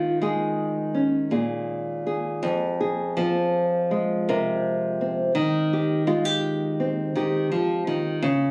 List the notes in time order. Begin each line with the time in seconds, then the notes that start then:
Already playing: D#3 G#3 F4
0.22 G#3 G#4
0.95 C#4
1.31 A#2 G#4
2.07 G#4
2.43 F2
2.81 G#4
3.17 F3 C4
3.91 G#3
4.29 C3 A#4
5.01 C4
5.35 D#3
5.73 G4
6.07 G#3 F4
6.25 G4
6.80 C4
7.16 D#3 G4
7.52 F3
7.87 D#3
8.22 C#3